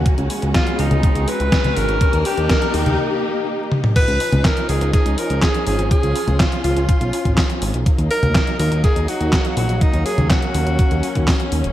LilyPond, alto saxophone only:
\new Staff \with { instrumentName = "Alto saxophone" } { \time 4/4 \key des \mixolydian \tempo 4 = 123 r4 f'8 ees'4 ces''4 bes'8~ | bes'8 g'8 bes'8 g'8 r2 | ces''4 bes'8 aes'8 aes'8 bes'8 aes'8 aes'8 | aes'4 f'8 f'2 r8 |
r8 bes'4 bes'8 aes'8 ges'4 ges'8 | ees'8 aes'8 ges'2~ ges'8 r8 | }